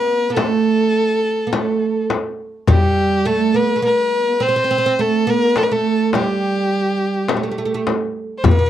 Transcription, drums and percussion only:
0.37 darbuka tek medium
0.37 frame drum medium
1.53 darbuka tek medium
1.53 frame drum medium
2.10 darbuka tek medium
2.10 frame drum medium
2.67 frame drum medium
2.67 darbuka dum medium
4.98 darbuka ka soft
5.56 darbuka tek medium
5.56 frame drum medium
6.13 darbuka tek medium
6.13 frame drum medium
7.28 darbuka tek medium
7.28 frame drum medium
7.87 darbuka tek medium
7.87 frame drum medium
8.44 frame drum medium
8.44 darbuka dum medium

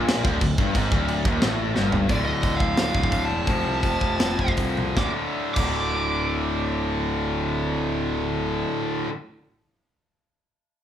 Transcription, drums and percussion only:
0.08 snare loud
0.08 crash medium
0.25 kick loud
0.41 kick loud
0.41 crash medium
0.58 kick loud
0.75 kick loud
0.75 crash medium
0.92 kick loud
1.08 crash medium
1.25 kick loud
1.42 snare loud
1.42 crash medium
1.76 snare medium
1.92 floor tom medium
2.09 kick loud
2.09 open hi-hat medium
2.43 kick medium
2.43 open hi-hat soft
2.60 kick medium
2.77 snare loud
2.77 open hi-hat medium
2.95 kick medium
3.03 kick medium
3.12 kick medium
3.12 open hi-hat medium
3.47 kick loud
3.47 open hi-hat medium
3.83 kick medium
3.83 open hi-hat medium
4.01 kick medium
4.20 snare loud
4.20 open hi-hat medium
4.39 kick medium
4.48 kick medium
4.57 kick medium
4.57 open hi-hat medium
4.77 high tom medium
4.97 kick loud
4.97 snare medium
5.56 kick loud
5.56 crash medium

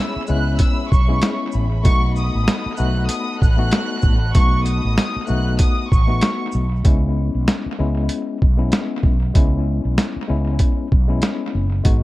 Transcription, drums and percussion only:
0.27 shaker medium
0.59 kick loud
0.59 closed hi-hat medium
0.92 kick loud
0.92 shaker medium
1.22 snare loud
1.22 closed hi-hat medium
1.52 shaker soft
1.85 kick loud
1.85 closed hi-hat medium
2.16 shaker medium
2.48 snare loud
2.48 closed hi-hat medium
2.77 shaker medium
3.09 closed hi-hat medium
3.42 kick loud
3.42 shaker medium
3.71 snare loud
3.71 closed hi-hat medium
4.02 kick medium
4.02 shaker soft
4.35 kick loud
4.35 closed hi-hat medium
4.66 closed hi-hat medium
4.66 shaker medium
4.98 snare loud
4.98 closed hi-hat medium
5.27 shaker medium
5.59 kick loud
5.59 closed hi-hat medium
5.92 kick loud
5.92 shaker medium
6.21 snare loud
6.21 closed hi-hat medium
6.52 shaker soft
6.85 kick loud
6.85 closed hi-hat medium
7.48 snare loud
7.48 closed hi-hat medium
8.09 closed hi-hat medium
8.42 kick medium
8.72 snare loud
8.72 closed hi-hat medium
9.03 kick medium
9.35 kick loud
9.35 closed hi-hat medium
9.98 snare loud
9.98 closed hi-hat medium
10.59 kick loud
10.59 closed hi-hat medium
10.92 kick loud
11.22 snare loud
11.22 closed hi-hat medium
11.85 kick loud
11.85 closed hi-hat medium

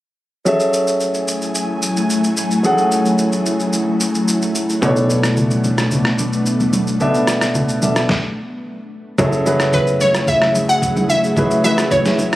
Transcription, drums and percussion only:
0.46 shaker medium
0.60 shaker medium
0.73 shaker medium
0.87 shaker medium
1.00 shaker medium
1.14 shaker medium
1.28 shaker medium
1.41 shaker soft
1.55 shaker medium
1.82 shaker medium
1.96 shaker medium
2.10 shaker medium
2.24 shaker medium
2.37 shaker medium
2.51 shaker soft
2.64 shaker medium
2.78 shaker medium
2.91 shaker medium
3.05 shaker medium
3.18 shaker medium
3.32 shaker medium
3.46 shaker medium
3.60 shaker soft
3.73 shaker medium
4.00 shaker medium
4.15 shaker medium
4.28 shaker medium
4.42 shaker medium
4.55 shaker medium
4.69 shaker medium
4.82 low conga medium
4.82 shaker medium
4.96 shaker medium
5.10 shaker medium
5.23 cross-stick medium
5.23 shaker medium
5.37 low conga medium
5.37 shaker medium
5.51 high conga soft
5.51 shaker medium
5.64 high conga medium
5.64 shaker medium
5.78 cross-stick medium
5.78 shaker medium
5.91 low conga medium
5.91 shaker medium
6.05 cross-stick medium
6.18 high conga medium
6.18 shaker medium
6.33 shaker medium
6.46 shaker medium
6.60 high conga medium
6.60 shaker soft
6.73 high conga medium
6.73 shaker medium
6.87 shaker medium
7.00 low conga medium
7.00 shaker medium
7.14 shaker medium
7.27 cross-stick medium
7.27 shaker medium
7.41 cross-stick medium
7.41 shaker medium
7.54 low conga medium
7.54 shaker medium
7.69 shaker medium
7.82 high conga medium
7.82 shaker medium
7.96 cross-stick medium
7.96 shaker medium
8.09 kick loud
8.09 snare medium
9.18 kick loud
9.18 low conga medium
9.18 shaker medium
9.32 shaker medium
9.46 shaker medium
9.60 cross-stick medium
9.60 shaker medium
9.73 kick medium
9.73 low conga medium
9.73 shaker medium
9.87 shaker medium
10.00 high conga medium
10.00 shaker medium
10.14 cross-stick medium
10.14 shaker medium
10.27 kick loud
10.27 low conga medium
10.27 shaker medium
10.42 cross-stick medium
10.55 high conga medium
10.55 shaker medium
10.69 shaker medium
10.82 kick medium
10.82 shaker medium
10.96 high conga medium
10.96 shaker medium
11.09 high conga medium
11.09 shaker medium
11.24 shaker medium
11.36 kick loud
11.36 low conga medium
11.36 shaker medium
11.51 shaker medium
11.64 shaker medium
11.78 cross-stick loud
11.78 shaker medium
11.91 kick medium
11.91 low conga medium
11.91 shaker medium
12.05 snare medium
12.05 shaker medium
12.18 high conga medium
12.18 shaker medium
12.33 shaker medium

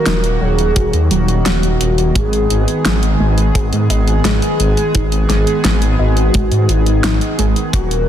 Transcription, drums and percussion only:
0.06 snare loud
0.06 closed hi-hat medium
0.24 closed hi-hat soft
0.59 closed hi-hat soft
0.76 kick loud
0.76 closed hi-hat medium
0.93 closed hi-hat soft
1.11 closed hi-hat medium
1.28 closed hi-hat soft
1.46 snare loud
1.46 closed hi-hat medium
1.63 closed hi-hat soft
1.81 closed hi-hat medium
1.98 closed hi-hat soft
2.15 kick loud
2.15 closed hi-hat medium
2.33 closed hi-hat soft
2.50 closed hi-hat medium
2.68 closed hi-hat soft
2.85 snare loud
2.85 closed hi-hat medium
3.03 closed hi-hat soft
3.38 closed hi-hat soft
3.55 kick loud
3.55 closed hi-hat medium
3.73 closed hi-hat soft
3.90 closed hi-hat medium
4.08 closed hi-hat soft
4.25 snare loud
4.25 closed hi-hat medium
4.42 closed hi-hat soft
4.60 closed hi-hat medium
4.77 closed hi-hat soft
4.95 kick loud
4.95 closed hi-hat medium
5.12 closed hi-hat soft
5.30 snare soft
5.30 closed hi-hat medium
5.47 closed hi-hat soft
5.65 snare loud
5.65 closed hi-hat medium
5.82 closed hi-hat soft
6.17 closed hi-hat soft
6.34 kick loud
6.34 closed hi-hat medium
6.52 closed hi-hat soft
6.69 closed hi-hat medium
6.86 closed hi-hat soft
7.04 snare loud
7.04 closed hi-hat medium
7.21 closed hi-hat soft
7.39 closed hi-hat medium
7.56 closed hi-hat soft
7.73 kick loud
7.73 closed hi-hat medium
7.91 closed hi-hat soft

